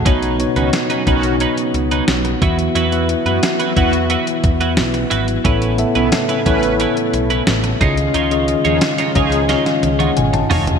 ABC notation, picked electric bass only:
X:1
M:4/4
L:1/16
Q:1/4=89
K:E
V:1 name="Picked electric bass" clef=bass
B,,,3 C,, z2 B,,,3 z C,,2 B,,,2 E,,2 | E,,3 F,, z2 E,,3 z E,,2 B,,,2 G,,,2 | A,,,3 B,,, z2 A,,,3 z B,,,2 A,,,2 C,,2 | C,,3 D,, z2 C,,3 z C,,2 G,,,2 ^E,,,2 |]